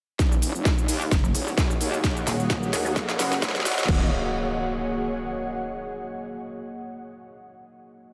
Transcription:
0.19 wobble bass D#1, ambient pad A#3 F#4 G#4 D#5 F#5, kick, snare, closed hi-hat, riser, cabasa
0.29 ambient pad C#5, cabasa
0.42 closed hi-hat, open hi-hat, cabasa
0.55 wobble bass F1, cabasa
0.65 kick, snare, closed hi-hat, cabasa
0.78 cabasa
0.88 wobble bass D#2, open hi-hat, cabasa
1.01 cabasa
1.11 wobble bass F#1, kick, snare, closed hi-hat, cabasa
1.24 ambient pad F#5, cabasa
1.35 wobble bass D#1, closed hi-hat, open hi-hat, cabasa
1.47 snare, cabasa
1.58 kick, snare, closed hi-hat, cabasa
1.71 cabasa
1.81 wobble bass D#2, closed hi-hat, open hi-hat, cabasa
1.94 cabasa
2.04 kick, snare, closed hi-hat, cabasa
2.17 cabasa
2.27 wobble bass D#1, snare, closed hi-hat, open hi-hat, cabasa
2.40 cabasa
2.50 kick, snare, closed hi-hat, cabasa
2.63 cabasa
2.73 wobble bass D#2, snare, closed hi-hat, open hi-hat, cabasa
2.86 cabasa
2.96 wobble bass D#1, kick, snare, closed hi-hat, cabasa
3.09 snare, cabasa
3.19 wobble bass F#1, snare, closed hi-hat, open hi-hat, cabasa
3.32 snare, cabasa
3.42 kick, snare, closed hi-hat, cabasa
3.49 snare
3.55 snare, closed hi-hat, cabasa
3.60 snare
3.65 snare, closed hi-hat, open hi-hat, cabasa
3.72 snare
3.78 snare, cabasa
3.83 snare
3.88 wobble bass D#1, ambient pad G#4, kick, crash, impact
3.96 ambient pad C#5
4.03 ambient pad F#5

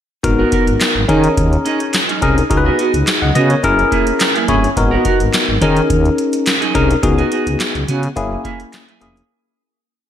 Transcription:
0.23 fm bass G#1, tine electric piano B3 D#4 F#4 A#4, muted clean electric guitar stroke, kick, closed hi-hat
0.39 clean electric guitar B3 F#4 A#4
0.52 clean electric guitar B3 F#4 A#4, kick, closed hi-hat
0.67 fm bass G#1, muted clean electric guitar stroke, closed hi-hat
0.80 muted clean electric guitar stroke, snare, clap, closed hi-hat
0.95 fm bass G#1, muted clean electric guitar stroke
1.08 fm bass D#3, tine electric piano C#4 D#4 G#4 A#4, clean electric guitar C#4 D#4 G#4, kick, closed hi-hat
1.24 muted clean electric guitar stroke, closed hi-hat
1.37 fm bass D#2, muted clean electric guitar stroke, kick, closed hi-hat
1.52 muted clean electric guitar stroke, closed hi-hat
1.65 clean electric guitar C#4 D#4 G#4, closed hi-hat
1.80 muted clean electric guitar stroke, closed hi-hat
1.93 muted clean electric guitar stroke, snare, clap, closed hi-hat
2.08 clean electric guitar C#4 D#4 G#4, closed hi-hat
2.22 fm bass C2, tine electric piano C#4 D#4 G#4 A#4, clean electric guitar C#4 D#4 G#4, kick, closed hi-hat
2.37 muted clean electric guitar stroke, closed hi-hat
2.50 fm bass C#2, tine electric piano D#4 F#4 G#4 A#4, muted clean electric guitar stroke, kick, closed hi-hat
2.57 tine electric piano B4
2.65 clean electric guitar B3 F#4 G#4
2.78 clean electric guitar B3 F#4 G#4, closed hi-hat
2.94 fm bass C#2, muted clean electric guitar stroke, closed hi-hat
3.07 muted clean electric guitar stroke, snare, clap, closed hi-hat
3.22 fm bass C#2, tine electric piano D#5 F#5, muted clean electric guitar stroke
3.35 fm bass C#3, clean electric guitar B3 F#4 G#4, tine electric piano B4 D#5, closed hi-hat
3.50 tine electric piano A#4 C#5, muted clean electric guitar stroke, closed hi-hat
3.63 fm bass F#1, tine electric piano C#4 E4 G#4 A#4, muted clean electric guitar stroke, kick, closed hi-hat
3.78 muted clean electric guitar stroke, closed hi-hat
3.91 clean electric guitar A#3 E4 G#4, kick, closed hi-hat
4.07 muted clean electric guitar stroke, closed hi-hat
4.20 muted clean electric guitar stroke, snare, clap, closed hi-hat
4.34 clean electric guitar A#3 E4 G#4, closed hi-hat
4.48 fm bass G1, clean electric guitar A#3 E4 G#4, tine electric piano C#4 E4 G#4 C#5, kick, closed hi-hat
4.63 muted clean electric guitar stroke, closed hi-hat
4.76 fm bass G#1, tine electric piano B3 D#4 F#4 A#4, muted clean electric guitar stroke, kick, closed hi-hat
4.91 clean electric guitar B3 F#4 A#4
5.05 clean electric guitar B3 F#4 A#4, kick, closed hi-hat
5.20 fm bass G#1, muted clean electric guitar stroke, closed hi-hat
5.33 muted clean electric guitar stroke, snare, clap, closed hi-hat
5.48 fm bass G#1, muted clean electric guitar stroke
5.61 fm bass D#3, clean electric guitar C#4 D#4 G#4, tine electric piano C#4 D#4 G#4 A#4, kick, closed hi-hat
5.76 muted clean electric guitar stroke, closed hi-hat
5.90 fm bass D#2, muted clean electric guitar stroke, kick, closed hi-hat
6.05 muted clean electric guitar stroke, closed hi-hat
6.18 closed hi-hat
6.33 muted clean electric guitar stroke, closed hi-hat
6.46 muted clean electric guitar stroke, snare, clap, closed hi-hat
6.61 clean electric guitar C#4 D#4 G#4, closed hi-hat
6.74 fm bass C2, tine electric piano C#4 D#4 G#4 A#4, clean electric guitar C#4 D#4 G#4, kick, closed hi-hat
6.90 muted clean electric guitar stroke, closed hi-hat
7.03 fm bass C#2, tine electric piano B3 D#4 F#4 G#4, muted clean electric guitar stroke, kick, closed hi-hat
7.18 clean electric guitar B3 F#4 G#4, closed hi-hat
7.31 clean electric guitar B3 F#4 G#4, closed hi-hat
7.47 fm bass C#2, muted clean electric guitar stroke, closed hi-hat
7.60 muted clean electric guitar stroke, snare, clap, closed hi-hat
7.75 fm bass C#2, muted clean electric guitar stroke, closed hi-hat
7.88 fm bass C#3, clean electric guitar B3 F#4 G#4, closed hi-hat
8.03 muted clean electric guitar stroke, closed hi-hat
8.16 fm bass F#1, tine electric piano A#3 C#4 E4 G#4, muted clean electric guitar stroke, kick, closed hi-hat
8.31 muted clean electric guitar stroke
8.44 clean electric guitar A#3 E4 G#4, kick, closed hi-hat
8.60 muted clean electric guitar stroke, closed hi-hat
8.73 snare, clap, closed hi-hat
8.88 clean electric guitar A#3 E4 G#4, closed hi-hat
9.01 fm bass F1, tine electric piano A#3 C#4 E4 G#4, clean electric guitar A#3 E4 G#4, closed hi-hat
9.16 muted clean electric guitar stroke, closed hi-hat

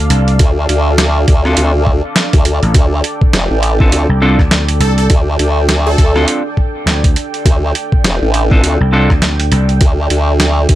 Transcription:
Already playing: analog synth pad D4 A4 D5 F5
0.10 slap bass C2, closed hi-hat
0.28 closed hi-hat
0.39 wobble bass D2, kick, closed hi-hat
0.69 wobble bass D2, closed hi-hat
0.98 snare, closed hi-hat
1.28 wobble bass D2, kick, closed hi-hat
1.45 clean electric guitar C4 D4 F4 A4, cross-stick
1.57 wobble bass D2, closed hi-hat
1.87 kick
2.16 snare, closed hi-hat
2.33 wobble bass D2, kick, closed hi-hat
2.45 closed hi-hat
2.63 slap bass A1, closed hi-hat
2.74 wobble bass D2, analog synth pad G5, kick, closed hi-hat
3.04 closed hi-hat
3.21 kick
3.33 wobble bass F1, snare, closed hi-hat
3.51 wobble bass A1
3.63 closed hi-hat
3.80 clean electric guitar C4 D4 F4 A4, kick
3.92 wobble bass D2, closed hi-hat
4.09 slap bass C2
4.22 clean electric guitar C4 D4 F4 A4
4.39 slap bass D2, kick, cross-stick
4.51 snare, closed hi-hat
4.69 closed hi-hat
4.80 slap bass C2, digital synth lead A4, closed hi-hat
4.98 digital synth lead A4, closed hi-hat
5.10 wobble bass D2, kick, closed hi-hat
5.39 wobble bass D2, closed hi-hat
5.69 snare, closed hi-hat
5.87 digital synth lead A4
5.98 wobble bass D2, kick, closed hi-hat
6.16 clean electric guitar C4 D4 F4 A4, cross-stick
6.28 closed hi-hat
6.57 kick
6.86 slap bass D2, snare, closed hi-hat
7.04 kick, closed hi-hat
7.16 closed hi-hat
7.34 closed hi-hat
7.45 wobble bass D2, kick, closed hi-hat
7.75 closed hi-hat
7.92 kick
8.04 wobble bass F1, snare, closed hi-hat
8.22 wobble bass A1
8.34 closed hi-hat
8.51 clean electric guitar C4 D4 F4 A4, kick
8.63 wobble bass D2, closed hi-hat
8.81 slap bass C2
8.92 clean electric guitar C4 D4 F4 A4
9.10 slap bass D2, kick, cross-stick
9.22 snare, closed hi-hat
9.40 closed hi-hat
9.52 slap bass C2, closed hi-hat
9.69 closed hi-hat
9.81 wobble bass D2, kick, closed hi-hat
10.10 wobble bass D2, closed hi-hat
10.40 snare, closed hi-hat
10.69 wobble bass D2, kick, closed hi-hat

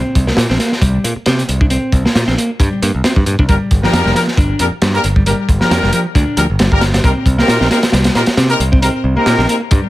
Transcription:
Already playing: picked electric bass C4
0.15 picked electric bass C2, kick, closed hi-hat
0.27 picked electric bass A#3, snare
0.37 picked electric bass A#2, snare, closed hi-hat
0.50 picked electric bass A#1 C4, snare
0.59 picked electric bass A#3, snare, closed hi-hat
0.72 snare
0.81 picked electric bass C2 G3, kick, closed hi-hat
1.04 picked electric bass A#2 A#3, closed hi-hat
1.16 muted picked electric bass stroke
1.26 picked electric bass C3 C4, snare, closed hi-hat
1.39 closed hi-hat
1.49 picked electric bass C2, closed hi-hat
1.61 picked electric bass D4, kick
1.70 picked electric bass C4, closed hi-hat
1.92 picked electric bass C2, kick, closed hi-hat
2.05 picked electric bass A#3, muted picked electric bass stroke, snare
2.15 picked electric bass A#2, snare, closed hi-hat
2.27 picked electric bass A#1 C4, snare
2.38 picked electric bass A#3, closed hi-hat
2.60 picked electric bass G2 G3, kick, closed hi-hat
2.82 picked electric bass G2 A#3, closed hi-hat
2.95 picked electric bass C2
3.04 picked electric bass C4, snare, closed hi-hat
3.16 picked electric bass G2, kick
3.26 picked electric bass G2, closed hi-hat
3.39 picked electric bass C2 D4, kick
3.49 picked electric bass G1 G3, brass ensemble A#3 D4 G4 A#4, kick, closed hi-hat
3.71 picked electric bass G1, kick, closed hi-hat
3.83 picked electric bass F3, brass ensemble A#3 D4 G4 A#4, snare
3.93 picked electric bass F2, snare, closed hi-hat
4.05 picked electric bass F1 G3, snare
4.15 picked electric bass F3, brass ensemble A#3 D4 G4 A#4, snare, closed hi-hat
4.28 snare
4.37 picked electric bass G1 D4, kick, closed hi-hat
4.59 picked electric bass F2 F3, brass ensemble A#3 D4 G4 A#4, closed hi-hat
4.72 muted picked electric bass stroke
4.82 picked electric bass G2 G3, snare, closed hi-hat
4.95 brass ensemble A#3 D4 G4 A#4, closed hi-hat
5.04 picked electric bass G1, closed hi-hat
5.16 picked electric bass G3, kick
5.26 picked electric bass G3, brass ensemble A#3 D4 G4 A#4, closed hi-hat
5.49 picked electric bass G1, kick, closed hi-hat
5.61 picked electric bass F3, brass ensemble A#3 D4 G4 A#4, muted picked electric bass stroke, snare
5.71 picked electric bass F2, snare, closed hi-hat
5.83 picked electric bass F1 G3, snare
5.93 picked electric bass F3, brass ensemble A#3 D4 G4 A#4, closed hi-hat
6.15 picked electric bass D2 D4, kick, closed hi-hat
6.37 picked electric bass D2 F3, brass ensemble A#3 D4 G4 A#4, closed hi-hat
6.50 picked electric bass G1
6.59 picked electric bass G1 G3, snare, closed hi-hat
6.72 picked electric bass G1, brass ensemble A#3 D4 G4 A#4, kick
6.81 snare, closed hi-hat
6.94 picked electric bass G3, snare, closed hi-hat
7.04 picked electric bass C2 C4, brass ensemble C4 D#4 G4 A#4, kick, closed hi-hat
7.26 picked electric bass C2, kick, closed hi-hat
7.38 picked electric bass A#3, brass ensemble C4 D#4 G4 A#4, snare
7.48 picked electric bass A#2, snare, closed hi-hat
7.61 picked electric bass A#1 C4, snare
7.71 picked electric bass A#3, brass ensemble C4 D#4 G4 A#4, snare, closed hi-hat
7.83 snare, closed hi-hat
7.92 picked electric bass C2 G3, snare, closed hi-hat
8.04 snare, closed hi-hat
8.15 picked electric bass A#2 A#3, brass ensemble C4 D#4 G4 A#4, snare, closed hi-hat
8.26 muted picked electric bass stroke, snare, closed hi-hat
8.37 picked electric bass C3 C4, snare, closed hi-hat
8.50 brass ensemble C4 D#4 G4 A#4, closed hi-hat
8.60 picked electric bass C2, closed hi-hat
8.72 picked electric bass C4, kick
8.82 picked electric bass C4, brass ensemble C4 D#4 G4 A#4, closed hi-hat
9.04 picked electric bass C2
9.17 picked electric bass A#3, brass ensemble C4 D#4 G4 A#4, muted picked electric bass stroke
9.26 picked electric bass A#2, snare, closed hi-hat
9.38 picked electric bass A#1 C4, snare
9.49 picked electric bass A#3, brass ensemble C4 D#4 G4 A#4, closed hi-hat
9.71 picked electric bass G2 G3, kick, closed hi-hat

